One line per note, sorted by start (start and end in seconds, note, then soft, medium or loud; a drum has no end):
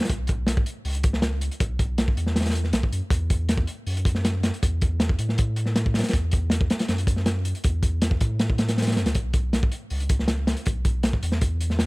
0.01 snare loud
0.05 snare medium
0.05 closed hi-hat medium
0.10 0.65 B1 loud
0.10 kick loud
0.10 closed hi-hat medium
0.27 kick loud
0.27 closed hi-hat medium
0.47 snare loud
0.47 closed hi-hat loud
0.57 kick loud
0.66 closed hi-hat medium
0.85 1.50 C#2 medium
0.85 open hi-hat medium
0.95 closed hi-hat soft
1.03 kick loud
1.03 closed hi-hat medium
1.13 snare medium
1.22 snare loud
1.22 closed hi-hat medium
1.41 closed hi-hat medium
1.51 closed hi-hat soft
1.60 2.16 B1 loud
1.60 kick loud
1.60 closed hi-hat medium
1.79 kick medium
1.79 closed hi-hat medium
1.98 snare loud
1.98 closed hi-hat medium
2.08 kick medium
2.17 2.73 E2 loud
2.17 closed hi-hat medium
2.26 snare medium
2.36 snare medium
2.36 closed hi-hat medium
2.40 snare medium
2.40 closed hi-hat medium
2.46 snare medium
2.46 closed hi-hat medium
2.49 snare medium
2.49 closed hi-hat medium
2.55 closed hi-hat medium
2.64 snare soft
2.73 2.91 B1 medium
2.73 snare loud
2.73 closed hi-hat medium
2.83 kick medium
2.92 3.01 F#2 loud
2.92 closed hi-hat medium
3.10 3.66 E2 loud
3.10 kick loud
3.10 closed hi-hat medium
3.30 kick loud
3.30 closed hi-hat medium
3.49 snare loud
3.49 closed hi-hat medium
3.58 kick loud
3.67 closed hi-hat medium
3.87 4.51 F#2 medium
3.87 open hi-hat medium
3.97 closed hi-hat soft
4.05 kick medium
4.05 closed hi-hat medium
4.15 snare medium
4.25 snare loud
4.25 closed hi-hat medium
4.43 snare loud
4.43 closed hi-hat medium
4.54 closed hi-hat soft
4.63 5.18 E2 loud
4.63 kick loud
4.63 closed hi-hat medium
4.81 kick loud
4.81 closed hi-hat medium
5.00 snare loud
5.00 closed hi-hat medium
5.09 kick loud
5.19 6.02 A2 loud
5.19 closed hi-hat medium
5.29 snare medium
5.38 kick loud
5.38 closed hi-hat medium
5.56 closed hi-hat medium
5.66 snare soft
5.76 snare loud
5.76 closed hi-hat medium
5.86 kick medium
5.94 snare medium
5.94 closed hi-hat medium
5.99 snare medium
5.99 closed hi-hat medium
6.03 snare medium
6.03 closed hi-hat medium
6.08 snare loud
6.08 closed hi-hat medium
6.13 6.68 E2 loud
6.13 kick loud
6.13 closed hi-hat medium
6.32 kick medium
6.32 closed hi-hat medium
6.50 snare loud
6.50 closed hi-hat loud
6.61 kick loud
6.70 snare loud
6.70 closed hi-hat medium
6.79 snare loud
6.79 closed hi-hat medium
6.88 7.53 F#2 medium
6.88 snare loud
6.88 closed hi-hat medium
6.98 closed hi-hat medium
7.07 kick loud
7.07 closed hi-hat medium
7.16 snare medium
7.26 snare loud
7.26 closed hi-hat medium
7.45 closed hi-hat medium
7.55 closed hi-hat soft
7.64 8.20 E2 loud
7.64 kick loud
7.64 closed hi-hat medium
7.83 kick medium
7.83 closed hi-hat medium
8.02 snare loud
8.02 closed hi-hat medium
8.11 kick loud
8.21 8.98 A2 loud
8.21 kick loud
8.21 closed hi-hat medium
8.39 snare loud
8.39 closed hi-hat medium
8.50 kick medium
8.58 snare loud
8.58 closed hi-hat medium
8.68 snare loud
8.68 closed hi-hat medium
8.78 snare medium
8.78 closed hi-hat medium
8.82 snare medium
8.82 closed hi-hat medium
8.87 snare loud
8.87 closed hi-hat medium
8.91 snare medium
8.91 closed hi-hat medium
8.96 9.05 F#2 medium
8.96 snare loud
8.96 closed hi-hat medium
9.06 9.14 D2 medium
9.06 snare loud
9.06 closed hi-hat medium
9.15 9.70 B1 loud
9.15 kick loud
9.15 closed hi-hat medium
9.33 kick medium
9.33 closed hi-hat medium
9.53 snare loud
9.53 closed hi-hat medium
9.63 kick loud
9.72 closed hi-hat medium
9.90 10.55 C#2 medium
9.90 open hi-hat medium
10.00 closed hi-hat soft
10.09 kick medium
10.09 closed hi-hat medium
10.19 snare medium
10.28 snare loud
10.28 closed hi-hat medium
10.47 snare loud
10.47 closed hi-hat medium
10.57 closed hi-hat soft
10.66 11.21 B1 loud
10.66 kick loud
10.66 closed hi-hat medium
10.85 kick medium
10.85 closed hi-hat medium
11.03 snare loud
11.03 closed hi-hat medium
11.13 kick medium
11.23 11.86 E2 loud
11.23 closed hi-hat medium
11.32 snare medium
11.41 kick loud
11.41 closed hi-hat medium
11.61 closed hi-hat medium
11.70 snare soft
11.79 snare loud
11.79 closed hi-hat medium